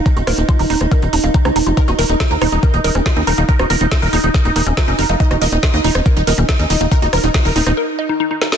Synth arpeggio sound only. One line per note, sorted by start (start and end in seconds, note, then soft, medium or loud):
0.06 0.13 D#4 medium
0.17 0.20 F#4 medium
0.27 0.30 A#4 loud
0.49 0.54 F4 medium
0.59 0.64 D#4 medium
0.70 0.78 D#4 loud
0.92 0.99 A#4 medium
1.13 1.18 D#4 medium
1.24 1.27 F5 medium
1.34 1.39 D#4 medium
1.45 1.48 D#4 medium
1.56 1.63 D#4 medium
1.66 1.70 F4 medium
1.77 1.85 D#4 medium
1.88 1.91 F#4 medium
1.99 2.02 A#4 loud
2.20 2.25 F4 medium
2.31 2.36 D#4 medium
2.42 2.49 D#4 loud
2.63 2.71 A#4 medium
2.84 2.87 A#4 loud
2.95 3.00 C#4 medium
3.06 3.11 F4 medium
3.16 3.24 C#4 medium
3.27 3.35 D#4 loud
3.38 3.43 F5 medium
3.49 3.56 D#4 medium
3.59 3.62 F#4 medium
3.70 3.73 A#4 loud
3.92 3.97 F4 medium
4.02 4.07 D#4 medium
4.13 4.21 D#4 loud
4.34 4.42 A#4 medium
4.56 4.59 A#4 loud
4.67 4.72 C#4 medium
4.77 4.82 F4 medium
4.88 4.96 C#4 medium
4.99 5.06 D#4 loud
5.09 5.14 F5 medium
5.20 5.28 D#4 medium
5.31 5.34 F#4 medium
5.42 5.45 A#4 loud
5.63 5.68 F4 medium
5.74 5.79 D#4 medium
5.84 5.92 D#4 loud
6.06 6.13 A#4 medium
6.27 6.30 A#4 loud
6.38 6.43 C#4 medium
6.49 6.54 F4 medium
6.59 6.67 C#4 medium
6.70 6.78 D#4 loud
6.81 6.86 F5 medium
6.92 6.99 D#4 medium
7.02 7.05 F#4 medium
7.13 7.16 A#4 loud
7.34 7.39 F4 medium
7.45 7.50 D#4 medium
7.56 7.63 D#4 loud
7.77 7.85 A#4 medium
7.99 8.02 D#5 medium
8.09 8.12 D#4 medium
8.20 8.28 D#4 medium
8.31 8.36 D#4 medium
8.42 8.47 D#4 medium
8.52 8.57 A#4 medium